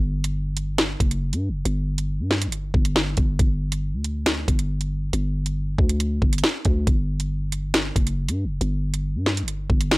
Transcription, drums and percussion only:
0, 0, Header, 1, 2, 480
1, 0, Start_track
1, 0, Tempo, 434783
1, 1826, Time_signature, 4, 2, 24, 8
1, 11016, End_track
2, 0, Start_track
2, 0, Title_t, "Drums"
2, 267, Note_on_c, 9, 42, 76
2, 377, Note_off_c, 9, 42, 0
2, 625, Note_on_c, 9, 42, 77
2, 736, Note_off_c, 9, 42, 0
2, 865, Note_on_c, 9, 38, 110
2, 865, Note_on_c, 9, 42, 79
2, 975, Note_off_c, 9, 38, 0
2, 975, Note_off_c, 9, 42, 0
2, 1106, Note_on_c, 9, 36, 88
2, 1108, Note_on_c, 9, 42, 82
2, 1216, Note_off_c, 9, 36, 0
2, 1218, Note_off_c, 9, 42, 0
2, 1227, Note_on_c, 9, 42, 72
2, 1337, Note_off_c, 9, 42, 0
2, 1467, Note_on_c, 9, 42, 72
2, 1578, Note_off_c, 9, 42, 0
2, 1826, Note_on_c, 9, 42, 74
2, 1937, Note_off_c, 9, 42, 0
2, 2187, Note_on_c, 9, 42, 78
2, 2297, Note_off_c, 9, 42, 0
2, 2546, Note_on_c, 9, 38, 70
2, 2657, Note_off_c, 9, 38, 0
2, 2667, Note_on_c, 9, 42, 82
2, 2778, Note_off_c, 9, 42, 0
2, 2785, Note_on_c, 9, 42, 77
2, 2895, Note_off_c, 9, 42, 0
2, 3026, Note_on_c, 9, 36, 90
2, 3136, Note_off_c, 9, 36, 0
2, 3147, Note_on_c, 9, 42, 72
2, 3257, Note_off_c, 9, 42, 0
2, 3265, Note_on_c, 9, 38, 114
2, 3376, Note_off_c, 9, 38, 0
2, 3499, Note_on_c, 9, 42, 74
2, 3506, Note_on_c, 9, 36, 90
2, 3609, Note_off_c, 9, 42, 0
2, 3617, Note_off_c, 9, 36, 0
2, 3746, Note_on_c, 9, 36, 111
2, 3746, Note_on_c, 9, 42, 75
2, 3856, Note_off_c, 9, 36, 0
2, 3856, Note_off_c, 9, 42, 0
2, 4106, Note_on_c, 9, 42, 75
2, 4217, Note_off_c, 9, 42, 0
2, 4465, Note_on_c, 9, 42, 77
2, 4575, Note_off_c, 9, 42, 0
2, 4704, Note_on_c, 9, 42, 79
2, 4705, Note_on_c, 9, 38, 108
2, 4815, Note_off_c, 9, 38, 0
2, 4815, Note_off_c, 9, 42, 0
2, 4946, Note_on_c, 9, 36, 86
2, 4948, Note_on_c, 9, 42, 81
2, 5056, Note_off_c, 9, 36, 0
2, 5058, Note_off_c, 9, 42, 0
2, 5067, Note_on_c, 9, 42, 72
2, 5177, Note_off_c, 9, 42, 0
2, 5307, Note_on_c, 9, 42, 72
2, 5418, Note_off_c, 9, 42, 0
2, 5666, Note_on_c, 9, 42, 73
2, 5777, Note_off_c, 9, 42, 0
2, 6027, Note_on_c, 9, 42, 74
2, 6137, Note_off_c, 9, 42, 0
2, 6386, Note_on_c, 9, 36, 94
2, 6496, Note_off_c, 9, 36, 0
2, 6507, Note_on_c, 9, 42, 81
2, 6618, Note_off_c, 9, 42, 0
2, 6625, Note_on_c, 9, 42, 79
2, 6735, Note_off_c, 9, 42, 0
2, 6866, Note_on_c, 9, 36, 85
2, 6976, Note_off_c, 9, 36, 0
2, 6986, Note_on_c, 9, 42, 76
2, 7046, Note_off_c, 9, 42, 0
2, 7046, Note_on_c, 9, 42, 65
2, 7105, Note_on_c, 9, 38, 113
2, 7106, Note_off_c, 9, 42, 0
2, 7106, Note_on_c, 9, 42, 52
2, 7166, Note_off_c, 9, 42, 0
2, 7166, Note_on_c, 9, 42, 42
2, 7216, Note_off_c, 9, 38, 0
2, 7276, Note_off_c, 9, 42, 0
2, 7339, Note_on_c, 9, 42, 77
2, 7346, Note_on_c, 9, 36, 93
2, 7449, Note_off_c, 9, 42, 0
2, 7457, Note_off_c, 9, 36, 0
2, 7585, Note_on_c, 9, 36, 108
2, 7586, Note_on_c, 9, 42, 71
2, 7696, Note_off_c, 9, 36, 0
2, 7696, Note_off_c, 9, 42, 0
2, 7946, Note_on_c, 9, 42, 75
2, 8057, Note_off_c, 9, 42, 0
2, 8305, Note_on_c, 9, 42, 80
2, 8415, Note_off_c, 9, 42, 0
2, 8545, Note_on_c, 9, 38, 111
2, 8545, Note_on_c, 9, 42, 82
2, 8655, Note_off_c, 9, 42, 0
2, 8656, Note_off_c, 9, 38, 0
2, 8786, Note_on_c, 9, 36, 88
2, 8788, Note_on_c, 9, 42, 83
2, 8896, Note_off_c, 9, 36, 0
2, 8898, Note_off_c, 9, 42, 0
2, 8906, Note_on_c, 9, 42, 72
2, 9017, Note_off_c, 9, 42, 0
2, 9147, Note_on_c, 9, 42, 73
2, 9257, Note_off_c, 9, 42, 0
2, 9506, Note_on_c, 9, 42, 75
2, 9617, Note_off_c, 9, 42, 0
2, 9866, Note_on_c, 9, 42, 76
2, 9977, Note_off_c, 9, 42, 0
2, 10226, Note_on_c, 9, 38, 69
2, 10337, Note_off_c, 9, 38, 0
2, 10347, Note_on_c, 9, 42, 83
2, 10457, Note_off_c, 9, 42, 0
2, 10464, Note_on_c, 9, 42, 80
2, 10575, Note_off_c, 9, 42, 0
2, 10705, Note_on_c, 9, 36, 89
2, 10816, Note_off_c, 9, 36, 0
2, 10826, Note_on_c, 9, 42, 74
2, 10937, Note_off_c, 9, 42, 0
2, 10945, Note_on_c, 9, 38, 114
2, 11016, Note_off_c, 9, 38, 0
2, 11016, End_track
0, 0, End_of_file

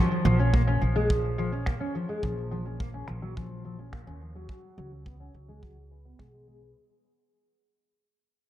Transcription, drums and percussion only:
0, 0, Header, 1, 2, 480
1, 0, Start_track
1, 0, Tempo, 566038
1, 1890, Time_signature, 4, 2, 24, 8
1, 7206, End_track
2, 0, Start_track
2, 0, Title_t, "Drums"
2, 94, Note_on_c, 9, 69, 20
2, 179, Note_off_c, 9, 69, 0
2, 214, Note_on_c, 9, 69, 68
2, 298, Note_off_c, 9, 69, 0
2, 335, Note_on_c, 9, 69, 26
2, 420, Note_off_c, 9, 69, 0
2, 455, Note_on_c, 9, 36, 79
2, 540, Note_off_c, 9, 36, 0
2, 574, Note_on_c, 9, 69, 21
2, 659, Note_off_c, 9, 69, 0
2, 695, Note_on_c, 9, 69, 60
2, 780, Note_off_c, 9, 69, 0
2, 815, Note_on_c, 9, 69, 28
2, 900, Note_off_c, 9, 69, 0
2, 933, Note_on_c, 9, 36, 98
2, 1018, Note_off_c, 9, 36, 0
2, 1055, Note_on_c, 9, 69, 20
2, 1140, Note_off_c, 9, 69, 0
2, 1175, Note_on_c, 9, 69, 69
2, 1259, Note_off_c, 9, 69, 0
2, 1294, Note_on_c, 9, 69, 31
2, 1379, Note_off_c, 9, 69, 0
2, 1410, Note_on_c, 9, 26, 57
2, 1415, Note_on_c, 9, 36, 85
2, 1495, Note_off_c, 9, 26, 0
2, 1500, Note_off_c, 9, 36, 0
2, 1534, Note_on_c, 9, 69, 19
2, 1619, Note_off_c, 9, 69, 0
2, 1654, Note_on_c, 9, 69, 66
2, 1739, Note_off_c, 9, 69, 0
2, 1775, Note_on_c, 9, 69, 28
2, 1860, Note_off_c, 9, 69, 0
2, 1892, Note_on_c, 9, 36, 80
2, 1976, Note_off_c, 9, 36, 0
2, 2014, Note_on_c, 9, 69, 38
2, 2099, Note_off_c, 9, 69, 0
2, 2133, Note_on_c, 9, 69, 71
2, 2218, Note_off_c, 9, 69, 0
2, 2254, Note_on_c, 9, 69, 23
2, 2339, Note_off_c, 9, 69, 0
2, 2376, Note_on_c, 9, 36, 83
2, 2461, Note_off_c, 9, 36, 0
2, 2609, Note_on_c, 9, 26, 64
2, 2612, Note_on_c, 9, 69, 65
2, 2694, Note_off_c, 9, 26, 0
2, 2697, Note_off_c, 9, 69, 0
2, 2732, Note_on_c, 9, 69, 28
2, 2817, Note_off_c, 9, 69, 0
2, 2858, Note_on_c, 9, 36, 88
2, 2943, Note_off_c, 9, 36, 0
2, 3092, Note_on_c, 9, 69, 68
2, 3177, Note_off_c, 9, 69, 0
2, 3212, Note_on_c, 9, 69, 30
2, 3297, Note_off_c, 9, 69, 0
2, 3331, Note_on_c, 9, 26, 62
2, 3332, Note_on_c, 9, 36, 72
2, 3416, Note_off_c, 9, 26, 0
2, 3417, Note_off_c, 9, 36, 0
2, 3572, Note_on_c, 9, 69, 62
2, 3657, Note_off_c, 9, 69, 0
2, 3808, Note_on_c, 9, 36, 84
2, 3893, Note_off_c, 9, 36, 0
2, 4291, Note_on_c, 9, 36, 82
2, 4376, Note_off_c, 9, 36, 0
2, 4773, Note_on_c, 9, 36, 95
2, 4858, Note_off_c, 9, 36, 0
2, 5251, Note_on_c, 9, 26, 56
2, 5253, Note_on_c, 9, 36, 81
2, 5336, Note_off_c, 9, 26, 0
2, 5338, Note_off_c, 9, 36, 0
2, 7206, End_track
0, 0, End_of_file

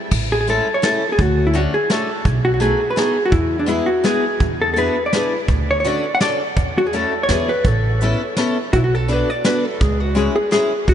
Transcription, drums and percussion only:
0, 0, Header, 1, 2, 480
1, 0, Start_track
1, 0, Key_signature, 3, "major"
1, 0, Tempo, 359066
1, 147, Time_signature, 3, 2, 24, 8
1, 14626, End_track
2, 0, Start_track
2, 0, Title_t, "Drums"
2, 148, Note_on_c, 9, 49, 74
2, 156, Note_on_c, 9, 36, 83
2, 282, Note_off_c, 9, 49, 0
2, 290, Note_off_c, 9, 36, 0
2, 631, Note_on_c, 9, 42, 42
2, 765, Note_off_c, 9, 42, 0
2, 1111, Note_on_c, 9, 38, 83
2, 1111, Note_on_c, 9, 42, 52
2, 1245, Note_off_c, 9, 38, 0
2, 1245, Note_off_c, 9, 42, 0
2, 1586, Note_on_c, 9, 42, 40
2, 1587, Note_on_c, 9, 36, 79
2, 1720, Note_off_c, 9, 42, 0
2, 1721, Note_off_c, 9, 36, 0
2, 2061, Note_on_c, 9, 42, 47
2, 2195, Note_off_c, 9, 42, 0
2, 2538, Note_on_c, 9, 38, 69
2, 2538, Note_on_c, 9, 42, 52
2, 2672, Note_off_c, 9, 38, 0
2, 2672, Note_off_c, 9, 42, 0
2, 3011, Note_on_c, 9, 36, 86
2, 3019, Note_on_c, 9, 42, 46
2, 3144, Note_off_c, 9, 36, 0
2, 3153, Note_off_c, 9, 42, 0
2, 3498, Note_on_c, 9, 42, 47
2, 3632, Note_off_c, 9, 42, 0
2, 3971, Note_on_c, 9, 38, 63
2, 3971, Note_on_c, 9, 42, 55
2, 4105, Note_off_c, 9, 38, 0
2, 4105, Note_off_c, 9, 42, 0
2, 4439, Note_on_c, 9, 42, 48
2, 4440, Note_on_c, 9, 36, 83
2, 4572, Note_off_c, 9, 42, 0
2, 4574, Note_off_c, 9, 36, 0
2, 4927, Note_on_c, 9, 42, 47
2, 5061, Note_off_c, 9, 42, 0
2, 5405, Note_on_c, 9, 38, 68
2, 5405, Note_on_c, 9, 42, 49
2, 5539, Note_off_c, 9, 38, 0
2, 5539, Note_off_c, 9, 42, 0
2, 5887, Note_on_c, 9, 36, 76
2, 5889, Note_on_c, 9, 42, 50
2, 6020, Note_off_c, 9, 36, 0
2, 6022, Note_off_c, 9, 42, 0
2, 6376, Note_on_c, 9, 42, 42
2, 6509, Note_off_c, 9, 42, 0
2, 6854, Note_on_c, 9, 38, 70
2, 6854, Note_on_c, 9, 42, 49
2, 6988, Note_off_c, 9, 38, 0
2, 6988, Note_off_c, 9, 42, 0
2, 7328, Note_on_c, 9, 42, 43
2, 7332, Note_on_c, 9, 36, 80
2, 7461, Note_off_c, 9, 42, 0
2, 7465, Note_off_c, 9, 36, 0
2, 7820, Note_on_c, 9, 42, 45
2, 7954, Note_off_c, 9, 42, 0
2, 8296, Note_on_c, 9, 38, 79
2, 8296, Note_on_c, 9, 42, 62
2, 8429, Note_off_c, 9, 38, 0
2, 8429, Note_off_c, 9, 42, 0
2, 8778, Note_on_c, 9, 36, 76
2, 8779, Note_on_c, 9, 42, 56
2, 8912, Note_off_c, 9, 36, 0
2, 8912, Note_off_c, 9, 42, 0
2, 9263, Note_on_c, 9, 42, 52
2, 9396, Note_off_c, 9, 42, 0
2, 9741, Note_on_c, 9, 38, 71
2, 9741, Note_on_c, 9, 42, 58
2, 9874, Note_off_c, 9, 38, 0
2, 9874, Note_off_c, 9, 42, 0
2, 10220, Note_on_c, 9, 42, 53
2, 10222, Note_on_c, 9, 36, 81
2, 10354, Note_off_c, 9, 42, 0
2, 10355, Note_off_c, 9, 36, 0
2, 10704, Note_on_c, 9, 42, 46
2, 10838, Note_off_c, 9, 42, 0
2, 11184, Note_on_c, 9, 38, 72
2, 11184, Note_on_c, 9, 42, 54
2, 11317, Note_off_c, 9, 38, 0
2, 11317, Note_off_c, 9, 42, 0
2, 11668, Note_on_c, 9, 42, 55
2, 11675, Note_on_c, 9, 36, 81
2, 11801, Note_off_c, 9, 42, 0
2, 11809, Note_off_c, 9, 36, 0
2, 12151, Note_on_c, 9, 42, 48
2, 12284, Note_off_c, 9, 42, 0
2, 12627, Note_on_c, 9, 38, 77
2, 12627, Note_on_c, 9, 42, 52
2, 12761, Note_off_c, 9, 38, 0
2, 12761, Note_off_c, 9, 42, 0
2, 13110, Note_on_c, 9, 42, 51
2, 13114, Note_on_c, 9, 36, 94
2, 13243, Note_off_c, 9, 42, 0
2, 13248, Note_off_c, 9, 36, 0
2, 13591, Note_on_c, 9, 42, 41
2, 13725, Note_off_c, 9, 42, 0
2, 14065, Note_on_c, 9, 38, 73
2, 14065, Note_on_c, 9, 42, 51
2, 14199, Note_off_c, 9, 38, 0
2, 14199, Note_off_c, 9, 42, 0
2, 14543, Note_on_c, 9, 36, 82
2, 14545, Note_on_c, 9, 42, 49
2, 14626, Note_off_c, 9, 36, 0
2, 14626, Note_off_c, 9, 42, 0
2, 14626, End_track
0, 0, End_of_file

